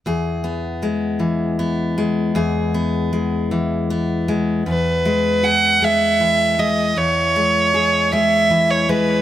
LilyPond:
<<
  \new Staff \with { instrumentName = "Fiddle" } { \time 6/8 \key e \major \tempo 4. = 52 r2. | r2. | b'4 fis''8 e''4 dis''8 | cis''4. e''8. cis''16 b'8 | }
  \new Staff \with { instrumentName = "Steel-string acoustic guitar" } { \clef bass \time 6/8 \key e \major << { gis'8 b8 gis4 b8 gis8 | gis'8 b8 gis4 b8 gis8 | r8 gis8 gis'8 gis4 gis8 | r8 gis8 gis'8 gis4 gis8 | } \\ { e,4. e4. | e,4. e4. | e,2 e4 | e,2 e4 | } >> }
>>